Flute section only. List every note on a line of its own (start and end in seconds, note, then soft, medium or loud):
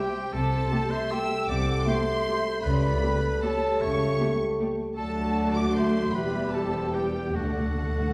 0.00 0.32 C5 medium
0.33 0.90 C5 medium
0.91 1.11 E5 medium
1.11 1.48 G5 medium
1.48 1.87 F#5 medium
1.86 2.63 E5 medium
2.64 3.19 D5 medium
3.43 3.80 C#5 medium
3.80 4.38 E5 medium
4.97 5.52 D5 medium
5.56 5.76 F#5 medium
5.76 6.12 E5 medium
6.14 6.52 E5 medium
6.52 6.94 C5 medium
6.93 7.35 B4 soft
7.34 8.13 A4 soft